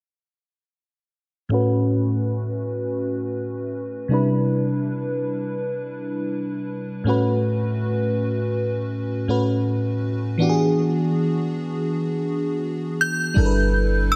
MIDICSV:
0, 0, Header, 1, 4, 480
1, 0, Start_track
1, 0, Key_signature, 3, "major"
1, 0, Tempo, 740741
1, 978, Time_signature, 4, 2, 24, 8
1, 9173, End_track
2, 0, Start_track
2, 0, Title_t, "Synth bell"
2, 0, Program_c, 0, 98
2, 8430, Note_on_c, 0, 91, 91
2, 9148, Note_on_c, 0, 88, 96
2, 9166, Note_off_c, 0, 91, 0
2, 9173, Note_off_c, 0, 88, 0
2, 9173, End_track
3, 0, Start_track
3, 0, Title_t, "FM electric piano"
3, 0, Program_c, 1, 5
3, 966, Note_on_c, 1, 45, 62
3, 973, Note_on_c, 1, 57, 58
3, 982, Note_on_c, 1, 61, 60
3, 991, Note_on_c, 1, 66, 61
3, 998, Note_on_c, 1, 71, 73
3, 1081, Control_c, 1, 64, 127
3, 2626, Note_off_c, 1, 45, 0
3, 2630, Note_off_c, 1, 57, 0
3, 2634, Note_off_c, 1, 61, 0
3, 2639, Note_off_c, 1, 66, 0
3, 2642, Note_off_c, 1, 71, 0
3, 2646, Note_on_c, 1, 48, 67
3, 2655, Note_on_c, 1, 55, 62
3, 2664, Note_on_c, 1, 62, 61
3, 2667, Control_c, 1, 64, 0
3, 2672, Note_on_c, 1, 64, 59
3, 2680, Note_on_c, 1, 71, 71
3, 2796, Control_c, 1, 64, 127
3, 4546, Note_off_c, 1, 48, 0
3, 4551, Note_off_c, 1, 55, 0
3, 4555, Note_off_c, 1, 62, 0
3, 4559, Note_off_c, 1, 64, 0
3, 4562, Note_on_c, 1, 45, 67
3, 4563, Note_off_c, 1, 71, 0
3, 4571, Note_on_c, 1, 57, 61
3, 4579, Note_on_c, 1, 61, 60
3, 4587, Control_c, 1, 64, 0
3, 4588, Note_on_c, 1, 66, 64
3, 4597, Note_on_c, 1, 71, 75
3, 4696, Control_c, 1, 64, 127
3, 5984, Note_off_c, 1, 45, 0
3, 5989, Note_off_c, 1, 57, 0
3, 5993, Note_off_c, 1, 61, 0
3, 5997, Note_off_c, 1, 66, 0
3, 6002, Note_off_c, 1, 71, 0
3, 6012, Note_on_c, 1, 45, 54
3, 6016, Note_on_c, 1, 57, 51
3, 6021, Note_on_c, 1, 61, 49
3, 6025, Note_on_c, 1, 66, 50
3, 6029, Note_on_c, 1, 71, 58
3, 6724, Note_on_c, 1, 52, 69
3, 6732, Note_on_c, 1, 59, 59
3, 6735, Note_off_c, 1, 45, 0
3, 6737, Note_off_c, 1, 57, 0
3, 6740, Note_off_c, 1, 61, 0
3, 6741, Note_on_c, 1, 62, 62
3, 6742, Note_off_c, 1, 66, 0
3, 6744, Note_off_c, 1, 71, 0
3, 6746, Control_c, 1, 64, 0
3, 6750, Note_on_c, 1, 66, 62
3, 6758, Note_on_c, 1, 67, 60
3, 6790, Note_off_c, 1, 67, 0
3, 6800, Note_on_c, 1, 68, 76
3, 6864, Control_c, 1, 64, 127
3, 8625, Note_off_c, 1, 52, 0
3, 8630, Note_off_c, 1, 59, 0
3, 8634, Note_off_c, 1, 62, 0
3, 8638, Note_off_c, 1, 66, 0
3, 8645, Note_on_c, 1, 55, 66
3, 8652, Note_on_c, 1, 62, 57
3, 8661, Note_on_c, 1, 64, 57
3, 8663, Note_off_c, 1, 68, 0
3, 8667, Control_c, 1, 64, 0
3, 8669, Note_on_c, 1, 69, 58
3, 8678, Note_on_c, 1, 70, 57
3, 8710, Note_off_c, 1, 70, 0
3, 8720, Note_on_c, 1, 71, 66
3, 8792, Control_c, 1, 64, 127
3, 9173, Note_off_c, 1, 55, 0
3, 9173, Note_off_c, 1, 62, 0
3, 9173, Note_off_c, 1, 64, 0
3, 9173, Note_off_c, 1, 69, 0
3, 9173, Note_off_c, 1, 71, 0
3, 9173, End_track
4, 0, Start_track
4, 0, Title_t, "808-style bass"
4, 0, Program_c, 2, 38
4, 8661, Note_on_c, 2, 31, 105
4, 9173, Note_off_c, 2, 31, 0
4, 9173, End_track
0, 0, End_of_file